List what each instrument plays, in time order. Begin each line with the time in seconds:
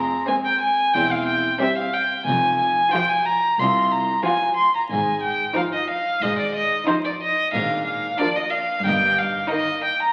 Already playing: double bass section F1, cello section F2, harpsichord F2 G#3 C4 C5, violin A#5
0.28 viola section G#3, violin section C4 C5, violin G#5
0.46 violin G5
0.61 violin G#5
0.94 double bass section E1, cello section E2, harpsichord E2 C4 C5, violin G5
1.12 violin F5
1.27 violin G5
1.60 viola section G3, violin section C4 C5, violin E5
1.78 violin F5
1.93 violin G5
2.26 double bass section F1, cello section F2, harpsichord F2, violin G#5
2.59 violin G#5
2.91 viola section F3, violin section F4 C5, violin G5
3.09 violin G#5
3.25 violin A#5
3.59 cello section C2, double bass section C2, harpsichord C2 F4 C5, violin C6
3.92 violin A#5
4.25 viola section F3, violin section F4 C5, violin G#5
4.56 violin C6
4.75 violin A#5
4.91 double bass section G#1, cello section G#2, harpsichord G#2, violin G#5
5.23 violin G5
5.55 viola section F3, violin section D#4 C5, violin F5
5.74 violin D#5
5.90 violin F5
6.21 double bass section G#1, cello section G#2, harpsichord G#2 D#4 C5, violin D#5
6.39 violin D5
6.54 violin D#5
6.87 viola section F3, violin section D#4 C5, violin C5
7.04 violin D5
7.21 violin D#5
7.52 double bass section G#1, cello section G#2, harpsichord G#2 A#3 D4 A#4, violin F5
7.86 violin F5
8.18 viola section F3, violin section D4 A#4, violin D5
8.36 violin D#5
8.51 violin F5
8.85 double bass section G1, cello section G2, harpsichord G2 A#3 D#4 A#4, violin G5
9.18 violin F5
9.50 viola section D#3, violin section D#4 A#4, violin D#5
9.84 violin G5
10.02 violin A#5